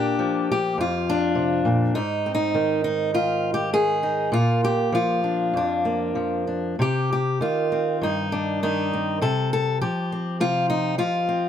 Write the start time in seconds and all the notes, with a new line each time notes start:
Already playing: A#2 D4 G4
0.19 F3
0.52 G4
0.78 F2 F4
1.09 D4
1.35 C3
1.65 A#2
1.95 G#2 D#4
2.26 C4
2.35 D#4
2.54 D#3
2.84 D#4
3.14 D#3 F4
3.54 G4
3.73 D#3 G#4
4.03 D#4
4.32 A#2 F4
4.64 G4
4.92 F3 F4
5.24 D4
5.54 F2 D4
5.85 A#3
6.15 F3
6.47 D4
6.79 C3 G4
7.12 G4
7.41 D#3 F4
7.72 C4
8.01 G2 D#4
8.32 D4
8.63 D#3 D#4
8.93 C4
9.22 C3 A4
9.53 A4
9.81 F3 G4
10.12 C4
10.40 C3 F4
10.70 D#4
10.98 F3 F4
11.29 C4